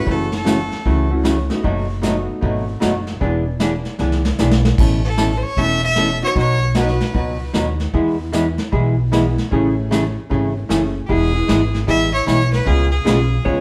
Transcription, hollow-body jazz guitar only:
0.06 0.28 C#3 soft
0.06 0.28 E3 medium
0.06 0.29 A3 medium
0.06 0.29 C#4 medium
0.06 0.29 F#4 medium
0.45 0.57 C#3 medium
0.45 0.57 E3 medium
0.45 0.58 A3 medium
0.45 0.58 C#4 medium
0.45 0.58 F#4 medium
0.85 1.07 C#3 soft
0.85 1.08 E3 medium
0.85 1.08 A3 medium
0.85 1.08 C#4 medium
0.85 1.08 F#4 medium
1.24 1.36 C#3 medium
1.24 1.36 E3 medium
1.24 1.37 A3 medium
1.24 1.37 C#4 medium
1.24 1.37 F#4 medium
1.64 1.86 B2 medium
1.64 1.86 F#3 medium
1.64 1.86 A3 medium
1.64 1.86 D#4 medium
1.64 1.86 F#4 medium
2.02 2.14 B2 medium
2.02 2.15 F#3 medium
2.02 2.15 A3 medium
2.02 2.15 D#4 medium
2.02 2.15 F#4 medium
2.41 2.64 B2 soft
2.41 2.64 F#3 medium
2.41 2.64 A3 medium
2.41 2.65 D#4 medium
2.41 2.65 F#4 medium
2.80 2.93 B2 medium
2.80 2.93 F#3 medium
2.80 2.93 A3 medium
2.80 2.93 D#4 medium
2.80 2.94 F#4 medium
3.20 3.43 E3 medium
3.20 3.43 B3 medium
3.20 3.43 D4 medium
3.20 3.43 G#4 medium
3.60 3.72 E3 medium
3.60 3.72 B3 medium
3.60 3.73 D4 medium
3.60 3.73 G#4 medium
3.99 4.22 E3 medium
3.99 4.22 B3 medium
3.99 4.22 D4 medium
3.99 4.22 G#4 medium
4.39 4.51 E3 medium
4.39 4.51 B3 medium
4.39 4.51 D4 medium
4.39 4.52 G#4 medium
4.79 5.01 B2 medium
4.79 5.01 E3 medium
4.79 5.01 A3 medium
4.79 5.01 C#4 medium
4.79 5.02 A4 medium
5.17 5.29 B2 medium
5.17 5.30 E3 medium
5.17 5.30 A3 medium
5.17 5.30 C#4 medium
5.17 5.30 A4 medium
5.58 5.79 B2 medium
5.58 5.80 E3 medium
5.58 5.80 A3 medium
5.58 5.80 C#4 medium
5.58 5.80 A4 medium
5.97 6.08 B2 medium
5.97 6.09 E3 medium
5.97 6.09 A3 medium
5.97 6.09 C#4 medium
5.97 6.09 A4 medium
6.35 6.58 B2 medium
6.35 6.58 F#3 medium
6.35 6.58 B3 medium
6.35 6.58 D#4 medium
6.35 6.58 F#4 medium
6.75 6.87 B2 medium
6.75 6.87 F#3 medium
6.75 6.88 B3 medium
6.75 6.88 D#4 medium
6.75 6.88 F#4 medium
7.14 7.36 B2 medium
7.14 7.37 F#3 medium
7.14 7.37 B3 medium
7.14 7.37 D#4 soft
7.14 7.37 F#4 medium
7.54 7.66 B2 medium
7.54 7.66 F#3 medium
7.54 7.66 B3 medium
7.54 7.66 D#4 medium
7.54 7.66 F#4 medium
7.93 8.16 E3 soft
7.93 8.16 G#3 medium
7.93 8.16 B3 medium
7.93 8.16 E4 medium
7.93 8.16 G#4 medium
8.32 8.44 E3 medium
8.32 8.45 G#3 medium
8.32 8.45 B3 medium
8.32 8.45 E4 medium
8.32 8.45 G#4 medium
8.72 8.94 E3 medium
8.72 8.94 G#3 medium
8.72 8.94 B3 soft
8.72 8.95 E4 medium
8.72 8.95 G#4 medium
9.12 9.24 E3 medium
9.12 9.24 G#3 medium
9.12 9.24 B3 medium
9.12 9.24 E4 medium
9.12 9.24 G#4 medium
9.51 9.73 C#3 medium
9.51 9.74 E3 medium
9.51 9.74 A3 medium
9.51 9.74 C#4 medium
9.51 9.74 G#4 medium
9.91 10.03 C#3 medium
9.91 10.03 E3 medium
9.91 10.03 A3 medium
9.91 10.03 C#4 medium
9.91 10.03 G#4 medium
10.30 10.52 C#3 medium
10.30 10.52 E3 medium
10.30 10.53 A3 medium
10.30 10.53 C#4 medium
10.30 10.53 G#4 medium
10.69 10.81 C#3 medium
10.69 10.81 E3 medium
10.69 10.82 A3 medium
10.69 10.82 C#4 medium
10.69 10.82 G#4 medium
11.09 11.31 E3 soft
11.09 11.31 G#3 medium
11.09 11.31 B3 medium
11.09 11.31 E4 medium
11.09 11.32 G#4 medium
11.48 11.60 E3 medium
11.48 11.60 G#3 medium
11.48 11.60 B3 medium
11.48 11.61 E4 medium
11.48 11.61 G#4 medium
11.87 12.10 E3 soft
11.87 12.10 G#3 medium
11.87 12.10 B3 medium
11.87 12.10 E4 medium
11.87 12.10 G#4 medium
12.27 12.39 E3 medium
12.27 12.39 G#3 medium
12.27 12.39 B3 medium
12.27 12.39 E4 medium
12.27 12.39 G#4 medium
12.65 12.88 C#3 soft
12.65 12.88 G#3 medium
12.65 12.89 B3 medium
12.65 12.89 F4 medium
12.65 12.89 G#4 medium
13.05 13.17 C#3 medium
13.05 13.18 G#3 medium
13.05 13.18 B3 medium
13.05 13.18 F4 medium
13.05 13.18 G#4 medium
13.45 13.61 C#3 medium
13.45 13.61 G#3 medium
13.45 13.61 B3 medium
13.45 13.61 F4 medium
13.45 13.61 G#4 medium

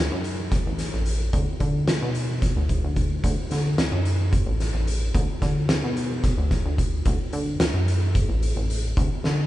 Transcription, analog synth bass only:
0.00 0.11 D2 medium
0.12 0.62 F#2 medium
0.66 0.91 A1 medium
0.93 1.30 A1 medium
1.33 1.46 D2 loud
1.61 1.86 D3 medium
1.88 2.00 D2 medium
2.02 2.53 B2 medium
2.56 2.81 D2 medium
2.84 3.21 D2 medium
3.24 3.37 D2 loud
3.52 3.76 D3 medium
3.79 3.91 D2 medium
3.92 4.43 F#2 medium
4.46 4.71 A1 medium
4.74 5.11 A1 medium
5.15 5.27 D2 loud
5.42 5.67 D3 medium
5.70 5.82 D2 medium
5.84 6.34 B2 medium
6.38 6.63 D2 medium
6.65 7.02 D2 medium
7.06 7.18 D2 loud
7.33 7.58 D3 medium
7.60 7.73 D2 medium
7.74 8.25 F#2 medium
8.29 8.54 A1 medium
8.56 8.93 A1 medium
8.97 9.09 D2 loud
9.25 9.47 D3 loud

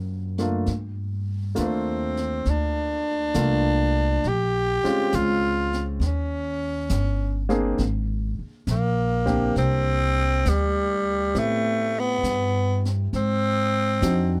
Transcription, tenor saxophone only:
1.58 2.51 C4 medium
2.50 4.30 D4 medium
4.28 5.17 G4 medium
5.16 5.85 F4 medium
6.06 7.49 C#4 medium
8.71 9.54 A#3 medium
9.58 10.50 C4 medium
10.49 11.40 G3 medium
11.39 12.01 A3 medium
11.99 12.86 B3 medium
13.16 14.40 C4 loud

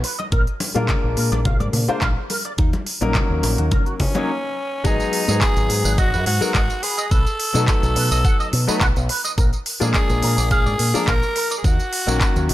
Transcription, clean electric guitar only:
0.04 0.15 B4 medium
0.19 0.25 D#5 medium
0.32 0.43 A#4 medium
1.17 1.28 A#4 medium
1.32 1.39 D5 medium
1.45 1.56 F5 medium
1.60 1.67 D5 medium
2.02 2.06 F5 medium
2.30 2.41 A#4 medium
2.45 2.52 D5 medium
2.58 2.70 D#4 medium
3.43 3.55 D#4 medium
3.58 3.65 F#4 medium
3.71 3.83 A#4 medium
3.86 3.93 F#4 medium
4.85 4.96 G#4 medium
5.70 5.81 G#4 medium
5.85 5.91 B4 medium
5.98 6.09 D#5 medium
6.13 6.20 B4 medium
6.55 6.59 D#5 medium
6.83 6.94 B4 medium
6.98 7.05 D#5 medium
7.11 7.23 B4 medium
7.96 8.07 B4 medium
8.11 8.18 D#5 medium
8.25 8.36 F#5 medium
8.40 8.46 D#5 medium
8.81 8.86 F#5 medium
9.09 9.21 B4 medium
9.24 9.31 D#5 medium
9.38 9.49 A#4 medium
10.23 10.34 A#4 medium
10.38 10.44 D5 medium
10.51 10.62 F5 medium
10.66 10.73 D5 medium
11.08 11.12 F5 medium
11.36 11.47 A#4 medium
11.51 11.58 D5 medium
11.64 11.76 D#4 medium
12.49 12.54 D#4 medium

